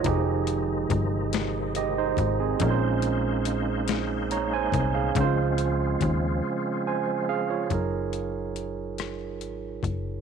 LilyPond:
<<
  \new Staff \with { instrumentName = "Tine electric piano" } { \time 6/8 \key ges \lydian \tempo 4. = 47 << { <ges' ees''>16 r4. r16 <g' ees''>16 <ees' c''>8 <c' aes'>16~ | <c' aes'>16 r4. r16 <des'' bes''>16 <c'' aes''>8 <aes' f''>16~ | <aes' f''>16 r4. r16 <c'' aes''>8 <aes' f''>16 <f' des''>16~ | <f' des''>16 r2 r8. | } \\ { <f ees' g' aes'>2. | <bes, aes des' ees' bes' c''>2. | <des aes ees' f' c''>2. | <ges ees' aes' bes'>2. | } >> }
  \new Staff \with { instrumentName = "Tonewheel organ" } { \time 6/8 \key ges \lydian ees'2.~ | ees'2. | f'2. | r2. | }
  \new Staff \with { instrumentName = "Tonewheel organ" } { \clef bass \time 6/8 \key ges \lydian << { <ees f aes>2. | <bes c''>2. | <f c'>2. | r2. | } \\ { c2. | des'2.~ | des'2. | r2. | } >> }
  \new Staff \with { instrumentName = "FM bass" } { \clef bass \time 6/8 \key ges \lydian f,,4 g,,4. aes,,8 | bes,,2~ bes,,8 c,8 | des,4 ees,8 r4. | ges,,2 aes,,8 ges,,8 | }
  \new DrumStaff \with { instrumentName = "Drums" } \drummode { \time 6/8 <hh bd>8 hh8 <hh bd>8 <hh sn>8 hh8 <hh bd>8 | <hh bd>8 hh8 hh8 <hh sn>8 hh8 <hh bd>8 | <hh bd>8 hh8 <hh bd>8 r4. | <hh bd>8 hh8 hh8 <hh ss>8 hh8 <hh bd>8 | }
>>